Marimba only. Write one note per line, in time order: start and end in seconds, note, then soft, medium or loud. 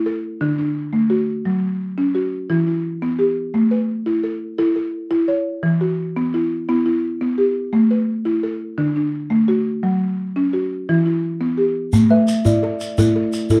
0.00 0.23 E4 medium
0.06 0.58 A4 medium
0.41 0.75 D3 medium
0.41 0.57 D4 medium
0.58 1.10 D4 medium
0.93 1.27 A3 medium
1.10 1.62 F#4 medium
1.45 1.80 F#3 medium
1.98 2.32 C#4 medium
2.15 2.67 F#4 medium
2.50 2.84 E3 medium
2.50 2.66 E4 medium
2.67 3.19 E4 soft
3.02 3.37 B3 medium
3.19 3.71 G4 medium
3.54 3.89 A3 medium
3.71 4.23 B4 medium
4.06 4.41 E4 medium
4.24 4.57 A4 medium
4.58 4.93 E4 medium
4.58 4.75 A4 medium
4.76 5.28 A4 medium
5.11 5.46 E4 medium
5.28 5.80 C#5 medium
5.63 5.98 E3 medium
5.81 6.33 F#4 medium
6.17 6.51 B3 medium
6.34 6.67 E4 medium
6.69 7.03 B3 medium
6.69 6.85 E4 medium
6.86 7.38 E4 medium
7.21 7.56 B3 medium
7.38 7.90 G4 medium
7.73 8.08 A3 medium
7.91 8.43 B4 medium
8.25 8.60 E4 medium
8.43 8.96 A4 medium
8.78 9.13 D3 medium
8.78 8.95 D4 medium
8.96 9.48 D4 medium
9.30 9.65 A3 medium
9.48 10.01 F#4 medium
9.83 10.18 F#3 medium
10.36 10.71 C#4 medium
10.53 11.06 F#4 medium
10.89 11.24 E3 medium
10.89 11.05 E4 medium
11.06 11.58 E4 medium
11.41 11.76 B3 medium
11.58 12.10 G4 medium
11.93 12.28 A3 medium
12.10 12.63 B4 medium
12.45 12.80 E4 medium
12.63 12.97 A4 medium
12.98 13.33 E4 medium
12.98 13.15 A4 medium
13.16 13.60 A4 medium
13.51 13.60 E4 medium